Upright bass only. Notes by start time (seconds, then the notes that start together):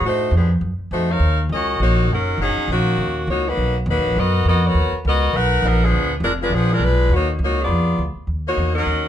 0.01 A2
0.31 F2
0.61 F#2
0.79 muted upright bass stroke
0.91 F2
1.20 D#2
1.49 C#2
1.80 A#1
2.08 F#1
2.37 F#1
2.56 muted upright bass stroke
2.68 A#1
2.97 D#2
3.27 C#2
3.57 B1
3.86 D#2
3.97 B1
4.06 A#1
4.16 F#2
4.45 F2
4.74 D#2
4.92 muted upright bass stroke
5.05 C#2
5.33 B1
5.62 A#1
5.92 D2
6.20 F1
6.50 A#1
6.79 B1
7.09 D#2
7.39 C#2
7.68 F2
7.98 D2
8.15 muted upright bass stroke
8.27 D#2
8.57 E2
8.86 D#2